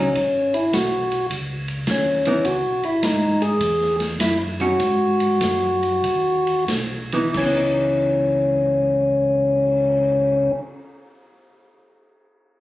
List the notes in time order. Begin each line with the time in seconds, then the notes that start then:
Already playing: C#2 F#3 C#4
0.00 D#4
0.15 G#1, kick, ride
0.54 E4, ride
0.73 B1 F#4, kick, snare, hi-hat pedal, ride
1.11 ride
1.30 C#2, kick, ride
1.68 ride
1.87 D#2, kick, snare, hi-hat pedal, ride
1.91 C#4
2.25 E3 B3 D#4, ride
2.44 C#2 F#4, kick, ride
2.64 B1
2.83 G#1 E4, ride
3.03 G#2 D#4, kick, snare, hi-hat pedal, ride
3.42 G#4, ride
3.60 E2, kick, ride
3.81 snare
4.00 snare, ride
4.20 F#2 E4, kick, snare, hi-hat pedal, ride
4.60 F#3 C#4 D#4 F#4, ride
4.80 G#2, kick, ride
5.20 ride
5.41 F#2, kick, snare, hi-hat pedal, ride
5.83 ride
6.04 D#2, kick, ride
6.47 ride
6.68 B1, kick, snare, hi-hat pedal, ride
7.12 E3 B3 D#4, ride
7.29 E3
7.34 C#2 C#4, kick, crash
7.43 B3
7.54 D#4
7.79 cymbal swell